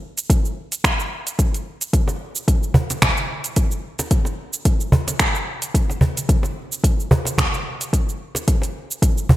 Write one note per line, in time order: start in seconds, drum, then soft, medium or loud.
0.18 closed hi-hat soft
0.18 shaker medium
0.30 kick loud
0.30 closed hi-hat medium
0.30 shaker soft
0.45 shaker soft
0.72 closed hi-hat soft
0.72 shaker medium
0.84 finger snap medium
0.84 kick medium
0.84 closed hi-hat medium
0.84 shaker soft
1.00 shaker soft
1.27 closed hi-hat soft
1.27 shaker medium
1.39 kick medium
1.39 closed hi-hat medium
1.39 shaker medium
1.54 closed hi-hat soft
1.54 shaker soft
1.81 closed hi-hat soft
1.81 shaker medium
1.93 kick medium
1.93 closed hi-hat soft
1.93 shaker soft
2.08 cajon slap medium
2.08 shaker soft
2.36 shaker medium
2.48 kick medium
2.48 closed hi-hat medium
2.48 shaker soft
2.63 shaker soft
2.74 cajon bass medium
2.90 cajon slap medium
2.90 closed hi-hat soft
2.90 shaker medium
3.02 finger snap medium
3.02 kick medium
3.02 cajon bass medium
3.02 closed hi-hat medium
3.02 shaker soft
3.17 shaker soft
3.44 closed hi-hat soft
3.44 shaker medium
3.56 kick medium
3.56 closed hi-hat medium
3.56 shaker soft
3.71 shaker soft
3.99 cajon slap medium
3.99 closed hi-hat soft
3.99 shaker medium
4.11 kick medium
4.11 closed hi-hat medium
4.11 shaker soft
4.25 cajon slap soft
4.25 shaker soft
4.53 shaker medium
4.65 kick medium
4.65 closed hi-hat medium
4.65 shaker soft
4.81 shaker soft
4.92 cajon bass medium
5.08 cajon slap medium
5.08 closed hi-hat soft
5.08 shaker medium
5.19 finger snap medium
5.19 kick medium
5.19 closed hi-hat medium
5.19 shaker soft
5.35 shaker soft
5.62 closed hi-hat soft
5.62 shaker medium
5.74 kick medium
5.74 closed hi-hat medium
5.74 shaker soft
5.90 cajon slap medium
5.90 shaker soft
6.01 cajon bass medium
6.17 closed hi-hat soft
6.17 shaker medium
6.29 kick medium
6.29 closed hi-hat medium
6.29 shaker soft
6.43 cajon slap medium
6.43 shaker soft
6.72 shaker medium
6.84 kick medium
6.84 closed hi-hat medium
6.84 shaker soft
7.00 shaker soft
7.11 cajon bass medium
7.25 cajon slap soft
7.25 closed hi-hat soft
7.25 shaker medium
7.38 finger snap medium
7.38 cajon bass medium
7.38 kick medium
7.38 closed hi-hat medium
7.38 shaker soft
7.54 shaker soft
7.81 closed hi-hat soft
7.81 shaker medium
7.93 kick medium
7.93 closed hi-hat medium
7.93 shaker medium
8.09 shaker soft
8.35 cajon slap medium
8.35 closed hi-hat soft
8.35 shaker medium
8.48 kick medium
8.48 closed hi-hat medium
8.48 shaker soft
8.62 cajon slap soft
8.62 closed hi-hat soft
8.62 shaker soft
8.91 shaker medium
9.02 kick medium
9.02 closed hi-hat medium
9.02 shaker soft
9.18 shaker soft
9.29 cajon bass medium